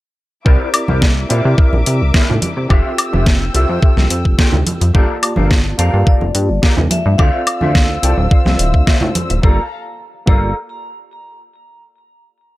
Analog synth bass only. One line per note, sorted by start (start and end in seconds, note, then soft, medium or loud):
0.46 0.57 C2 loud
0.89 1.25 C2 loud
1.31 1.42 A#2 medium
1.45 1.55 C3 loud
1.73 1.83 A#1 loud
1.87 2.03 C3 medium
2.02 2.12 C2 medium
2.30 2.40 A2 loud
2.57 2.67 C3 medium
2.70 2.82 F1 loud
3.13 3.50 F1 loud
3.55 3.66 C2 medium
3.69 3.80 F2 loud
3.97 4.08 C2 loud
4.10 4.27 F2 medium
4.25 4.36 F1 medium
4.53 4.64 D2 loud
4.81 4.92 F2 medium
4.95 5.06 G1 loud
5.37 5.74 G1 medium
5.79 5.90 F2 medium
5.94 6.04 G2 loud
6.07 6.19 F1 soft
6.21 6.32 F1 loud
6.35 6.51 G2 loud
6.49 6.60 G1 medium
6.78 6.88 E2 medium
7.06 7.16 G2 medium
7.19 7.30 D2 loud
7.62 7.98 D2 medium
8.03 8.14 C2 medium
8.18 8.28 D1 loud
8.46 8.56 C2 loud
8.59 8.76 D1 medium
8.74 8.84 D2 medium
9.02 9.12 A2 medium
9.30 9.40 D1 medium
9.43 9.59 G1 loud
10.28 10.54 G1 loud